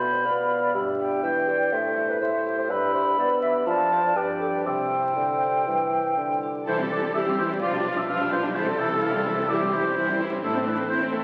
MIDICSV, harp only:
0, 0, Header, 1, 2, 480
1, 0, Start_track
1, 0, Key_signature, 0, "major"
1, 0, Tempo, 488202
1, 735, Time_signature, 4, 2, 24, 8
1, 4092, Tempo, 502092
1, 6492, Tempo, 469484
1, 11160, End_track
2, 0, Start_track
2, 0, Title_t, "Harp"
2, 0, Program_c, 0, 46
2, 0, Note_on_c, 0, 47, 40
2, 0, Note_on_c, 0, 65, 31
2, 0, Note_on_c, 0, 77, 31
2, 12, Note_on_c, 0, 59, 29
2, 240, Note_off_c, 0, 77, 0
2, 252, Note_on_c, 0, 77, 33
2, 477, Note_off_c, 0, 65, 0
2, 489, Note_on_c, 0, 65, 29
2, 735, Note_on_c, 0, 43, 41
2, 752, Note_off_c, 0, 65, 0
2, 754, Note_off_c, 0, 47, 0
2, 754, Note_off_c, 0, 77, 0
2, 963, Note_off_c, 0, 59, 0
2, 975, Note_on_c, 0, 59, 34
2, 1216, Note_on_c, 0, 76, 37
2, 1458, Note_on_c, 0, 67, 37
2, 1699, Note_on_c, 0, 45, 45
2, 1716, Note_off_c, 0, 59, 0
2, 1717, Note_off_c, 0, 43, 0
2, 1939, Note_on_c, 0, 64, 36
2, 2168, Note_off_c, 0, 76, 0
2, 2180, Note_on_c, 0, 76, 36
2, 2406, Note_off_c, 0, 67, 0
2, 2417, Note_on_c, 0, 67, 37
2, 2655, Note_on_c, 0, 43, 48
2, 2674, Note_off_c, 0, 45, 0
2, 2881, Note_off_c, 0, 64, 0
2, 2893, Note_on_c, 0, 64, 41
2, 3118, Note_off_c, 0, 76, 0
2, 3130, Note_on_c, 0, 76, 44
2, 3358, Note_off_c, 0, 67, 0
2, 3370, Note_on_c, 0, 67, 48
2, 3610, Note_on_c, 0, 41, 52
2, 3629, Note_off_c, 0, 43, 0
2, 3629, Note_off_c, 0, 64, 0
2, 3629, Note_off_c, 0, 67, 0
2, 3629, Note_off_c, 0, 76, 0
2, 3851, Note_on_c, 0, 69, 42
2, 3858, Note_on_c, 0, 74, 45
2, 4092, Note_on_c, 0, 43, 47
2, 4113, Note_off_c, 0, 41, 0
2, 4113, Note_off_c, 0, 69, 0
2, 4326, Note_off_c, 0, 74, 0
2, 4332, Note_on_c, 0, 67, 35
2, 4337, Note_on_c, 0, 74, 39
2, 4572, Note_on_c, 0, 48, 43
2, 4592, Note_off_c, 0, 43, 0
2, 4595, Note_off_c, 0, 74, 0
2, 4814, Note_on_c, 0, 64, 32
2, 5056, Note_on_c, 0, 72, 35
2, 5286, Note_off_c, 0, 67, 0
2, 5298, Note_on_c, 0, 67, 34
2, 5541, Note_on_c, 0, 55, 35
2, 5767, Note_off_c, 0, 64, 0
2, 5778, Note_on_c, 0, 64, 30
2, 6006, Note_off_c, 0, 72, 0
2, 6017, Note_on_c, 0, 72, 32
2, 6247, Note_off_c, 0, 67, 0
2, 6259, Note_on_c, 0, 67, 32
2, 6480, Note_off_c, 0, 48, 0
2, 6492, Note_on_c, 0, 48, 40
2, 6642, Note_off_c, 0, 64, 0
2, 6654, Note_on_c, 0, 64, 33
2, 6805, Note_off_c, 0, 67, 0
2, 6817, Note_on_c, 0, 67, 33
2, 6980, Note_on_c, 0, 76, 37
2, 7129, Note_off_c, 0, 72, 0
2, 7141, Note_on_c, 0, 72, 34
2, 7289, Note_off_c, 0, 67, 0
2, 7468, Note_on_c, 0, 47, 48
2, 7479, Note_off_c, 0, 48, 0
2, 7479, Note_off_c, 0, 64, 0
2, 7481, Note_off_c, 0, 72, 0
2, 7481, Note_off_c, 0, 76, 0
2, 7624, Note_on_c, 0, 65, 33
2, 7787, Note_on_c, 0, 67, 34
2, 7944, Note_on_c, 0, 77, 34
2, 8090, Note_off_c, 0, 67, 0
2, 8102, Note_on_c, 0, 67, 32
2, 8251, Note_off_c, 0, 65, 0
2, 8264, Note_on_c, 0, 65, 37
2, 8421, Note_on_c, 0, 48, 40
2, 8438, Note_off_c, 0, 77, 0
2, 8439, Note_off_c, 0, 65, 0
2, 8441, Note_off_c, 0, 47, 0
2, 8579, Note_on_c, 0, 64, 37
2, 8727, Note_off_c, 0, 67, 0
2, 8739, Note_on_c, 0, 67, 33
2, 8901, Note_on_c, 0, 76, 40
2, 9062, Note_on_c, 0, 72, 34
2, 9211, Note_off_c, 0, 67, 0
2, 9224, Note_on_c, 0, 67, 35
2, 9374, Note_off_c, 0, 55, 0
2, 9386, Note_on_c, 0, 55, 41
2, 9528, Note_off_c, 0, 64, 0
2, 9540, Note_on_c, 0, 64, 35
2, 9686, Note_off_c, 0, 67, 0
2, 9699, Note_on_c, 0, 67, 36
2, 9845, Note_off_c, 0, 76, 0
2, 9857, Note_on_c, 0, 76, 38
2, 10005, Note_off_c, 0, 72, 0
2, 10018, Note_on_c, 0, 72, 33
2, 10165, Note_off_c, 0, 67, 0
2, 10177, Note_on_c, 0, 67, 38
2, 10337, Note_on_c, 0, 45, 48
2, 10355, Note_off_c, 0, 67, 0
2, 10358, Note_off_c, 0, 48, 0
2, 10360, Note_off_c, 0, 55, 0
2, 10482, Note_off_c, 0, 64, 0
2, 10495, Note_on_c, 0, 64, 41
2, 10655, Note_on_c, 0, 69, 38
2, 10804, Note_off_c, 0, 76, 0
2, 10816, Note_on_c, 0, 76, 39
2, 10962, Note_off_c, 0, 72, 0
2, 10975, Note_on_c, 0, 72, 36
2, 11121, Note_off_c, 0, 69, 0
2, 11160, Note_off_c, 0, 45, 0
2, 11160, Note_off_c, 0, 64, 0
2, 11160, Note_off_c, 0, 72, 0
2, 11160, Note_off_c, 0, 76, 0
2, 11160, End_track
0, 0, End_of_file